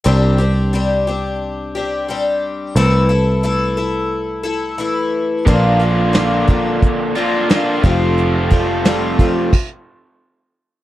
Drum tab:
CC |--------|--------|--------|----x---|
HH |--------|--------|xxxxxxxx|xxxx----|
SD |--------|--------|--o---o-|--o-----|
BD |--------|--------|o--oo--o|-o-oo---|